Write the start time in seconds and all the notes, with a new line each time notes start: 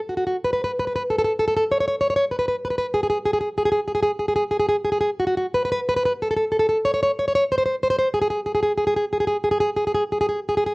0.09 F#4
0.17 F#4
0.27 F#4
0.45 B4
0.53 B4
0.64 B4
0.80 B4
0.87 B4
0.96 B4
1.10 A4
1.18 A4
1.24 A4
1.39 A4
1.48 A4
1.57 A4
1.71 C#5
1.80 C#5
1.88 C#5
2.01 C#5
2.10 C#5
2.16 C#5
2.31 B4
2.39 B4
2.48 B4
2.65 B4
2.70 B4
2.78 B4
2.94 G#4
3.03 G#4
3.10 G#4
3.25 G#4
3.33 G#4
3.58 G#4
3.65 G#4
3.72 G#4
3.88 G#4
3.95 G#4
4.03 G#4
4.19 G#4
4.28 G#4
4.36 G#4
4.51 G#4
4.60 G#4
4.69 G#4
4.85 G#4
4.92 G#4
5.01 G#4
5.20 F#4
5.27 F#4
5.37 F#4
5.54 B4
5.65 B4
5.72 B4
5.89 B4
5.96 B4
6.05 B4
6.22 A4
6.31 A4
6.36 A4
6.52 A4
6.59 A4
6.69 A4
6.85 C#5
6.94 C#5
7.03 C#5
7.19 C#5
7.28 C#5
7.35 C#5
7.52 C5
7.58 C5
7.66 C5
7.83 C5
7.90 C5
7.99 C5
8.14 G#4
8.22 G#4
8.30 G#4
8.46 G#4
8.55 G#4
8.63 G#4
8.78 G#4
8.87 G#4
8.97 G#4
9.13 G#4
9.20 G#4
9.27 G#4
9.44 G#4
9.51 G#4
9.60 G#4
9.77 G#4
9.87 G#4
9.95 G#4
10.12 G#4
10.21 G#4
10.29 G#4
10.49 G#4
10.57 G#4
10.66 G#4